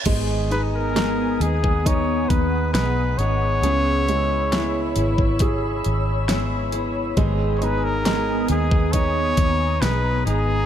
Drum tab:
CC |x---------------|----------------|----------------|
HH |x-x-x-x-x-x-x-x-|x-x-x-x-x-x-x-x-|x-x-x-x-x-x-x-x-|
SD |----o-------o---|----o-------o---|----o-------o---|
BD |o------oo-o-----|-------oo-------|o------oo-o-----|